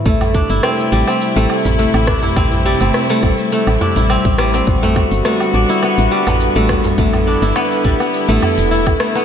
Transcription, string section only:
0.06 C3 G3 A3 E4
4.68 D3 B3 F#4
6.98 E4

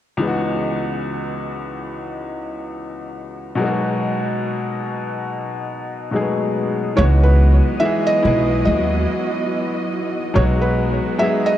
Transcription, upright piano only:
0.17 C#2 E3
0.21 G#3 B3 D#4
0.27 F#4
3.55 B2 F#3
3.60 G#3 A#3 D#4
3.65 B3 F#4
6.11 B2 F#3 G#3 A3
6.15 D#4 G#4
6.21 B3
6.96 E3 G#3 B3 D#4
7.01 F#4
7.80 E3 G#3 B3 D#4
7.85 G#4
8.23 G#3 B3 D#4 E4
8.27 G#4
10.34 F#3 G#3 B3 D#4
10.39 F#4
11.19 F#3 G#3 B3 D#4
11.24 G#4

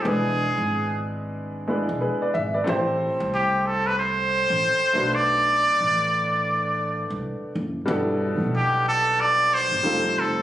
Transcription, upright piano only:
0.03 G#3 B3 D4 E4
0.08 B4
1.67 G#3 B3 D4 E4 B4
2.01 G#4 B4
2.22 B4 D5
2.34 E5
2.54 B4 D5
2.64 A3 C4 E4 G4
2.69 C5
4.93 A3 B3 D4 F#4
4.98 B4
7.86 B2 G3 D4 E4
7.91 A4
9.83 G3 C4 D#4 F4 A4

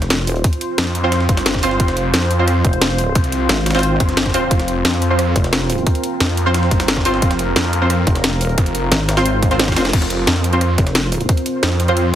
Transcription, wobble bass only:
Already playing: F1
2.65 F1
3.49 G#1
5.36 F1
8.07 F1
8.92 G#1
9.76 F1
10.78 F1

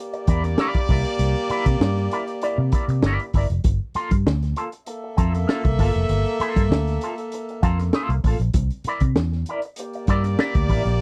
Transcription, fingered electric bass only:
0.28 E2
0.74 muted fingered electric bass stroke
0.89 C2
1.19 C2
1.50 muted fingered electric bass stroke
1.66 C3
1.80 G2
2.58 C3
2.88 C3
3.02 G1
3.34 G1
3.50 F1
3.64 G1
3.95 muted fingered electric bass stroke
4.11 G2
4.26 D2
5.18 F2
5.65 C2
5.79 G1
5.96 F1
6.09 G1
6.40 muted fingered electric bass stroke
6.56 G2
6.70 D2
7.63 F2
8.09 C2
8.24 A1
8.39 A#1
8.54 C2
8.85 muted fingered electric bass stroke
9.01 C3
9.16 E2
10.08 G2
10.55 D2
10.69 A1
10.85 A#1

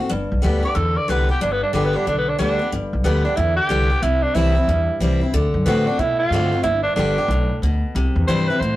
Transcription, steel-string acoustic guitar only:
0.01 C4
0.09 G2
0.42 D3 G3 B3 G4
0.63 B3 G4
0.75 D3
1.08 D3 G3 B3 G4
1.29 B3 G4
1.41 G2
1.73 D3 G3 B3 G4
1.93 B3 G4
2.07 D3
2.38 D3 G3 B3 G4
2.59 B3 G4
2.72 G2
3.04 D3 G3 B3 G4
3.25 B3 G4
3.37 D3
3.69 D3 G3 B3 G4
3.90 B3 G4
4.03 C3
4.35 E3 G3 C4 E4
4.55 C4 E4
4.69 G2
5.00 E3 G3 C4 E4
5.21 C4 E4
5.34 D3
5.66 D3 A3 C4 F#4
5.87 C4 F#4
5.99 A2
6.32 D3 A3 C4 F#4
6.52 C4 F#4
6.63 G2
6.96 D3 G3 B3 G4
7.18 B3 G4
7.31 A2
7.63 B2
7.96 C3
8.28 E3 G3 C4 E4
8.50 C4 E4
8.62 B2

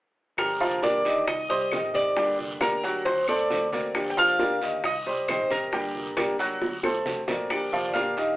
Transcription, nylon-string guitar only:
0.37 D3 F3 A#3 D4 G4
0.82 D3 F3 A#3 D4 G4
1.04 A#3 D4 G4
1.27 muted nylon-string guitar stroke
1.71 D#3 G3 C4 G4
1.94 D#3 G3 C4 G4
2.17 D3 G3 A#3 D4 G4
2.61 D3 G3 A#3 D4 G4
2.84 A#3 D4 G4
3.06 muted nylon-string guitar stroke
3.50 D3 A3 C4 F#4
3.73 A3 C4 F#4
3.95 D3 F3 A#3 D4 G4
4.39 D3 F3 A#3 D4 G4
4.61 A#3 D4 G4
4.84 muted nylon-string guitar stroke
5.29 D#3 G3 C4 G4
5.50 D#3 G3 C4 G4
5.72 D3 G3 A#3 D4 G4
6.16 D3 G3 A#3 D4 G4
6.39 A#3 D4 G4
6.61 muted nylon-string guitar stroke
7.05 D3 A3 C4 F#4
7.28 A3 C4 F#4
7.50 D3 F3 A#3 D4 G4
7.94 D3 F3 A#3 D4 G4
8.17 A#3 D4 G4

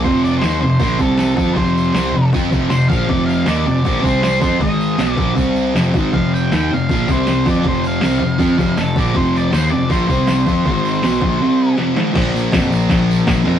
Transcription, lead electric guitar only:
0.04 C5
0.25 D5
0.39 C5
0.61 C5
1.01 A4
1.19 A4
1.37 A4
1.53 C5
2.70 C5
2.88 F5
3.09 D5
3.26 F5
3.48 D5
3.67 D5
4.04 C5
4.23 C5
4.41 C5
4.61 D#5
5.11 D5
6.13 F5
6.34 G5
6.56 G5
6.73 F5
7.11 C5
7.50 D5
7.68 C5
7.87 F5
8.80 A4
9.00 D5
9.16 C5
9.37 D5
9.53 C5
9.71 D5
9.91 C5

